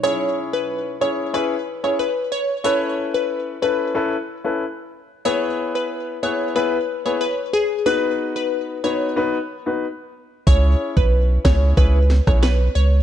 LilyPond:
<<
  \new Staff \with { instrumentName = "Synth pluck" } { \time 4/4 \key cis \minor \tempo 4 = 92 cis''16 r8 b'8 r16 cis''8 b'16 r8 cis''16 b'16 r16 cis''16 r16 | cis''16 r8 b'8 r16 b'8 r2 | cis''16 r8 b'8 r16 cis''8 b'16 r8 cis''16 b'16 r16 gis'16 r16 | b'16 r8 b'8 r16 cis''8 r2 |
cis''16 r8 b'8 r16 cis''8 b'16 r8 cis''16 b'16 r16 cis''16 r16 | }
  \new Staff \with { instrumentName = "Grand piano" } { \time 4/4 \key cis \minor <cis' e' gis' cis''>4. <cis' e' gis' cis''>8 <cis' e' gis' cis''>16 r8 <cis' e' gis' cis''>16 r4 | <cis' e' a' b'>4. <cis' e' a' b'>8 <cis' e' a' b'>16 r8 <cis' e' a' b'>16 r4 | <b e' gis' b'>4. <b e' gis' b'>8 <b e' gis' b'>16 r8 <b e' gis' b'>16 r4 | <b dis' fis' b'>4. <b dis' fis' b'>8 <b dis' fis' b'>16 r8 <b dis' fis' b'>16 r4 |
<cis' e' gis' cis''>4. <cis' e' gis' cis''>8 <cis' e' gis' cis''>16 r8 <cis' e' gis' cis''>16 r4 | }
  \new Staff \with { instrumentName = "Sub bass" } { \clef bass \time 4/4 \key cis \minor r1 | r1 | r1 | r1 |
cis,8 r16 b,,8. cis,8 cis,8. b,,8. cis,8 | }
  \new DrumStaff \with { instrumentName = "Drums" } \drummode { \time 4/4 r4 r4 r4 r4 | r4 r4 r4 r4 | r4 r4 r4 r4 | r4 r4 r4 r4 |
bd8. bd16 r8 <bd sn>8 bd8 sn16 <bd ss>16 sn4 | }
>>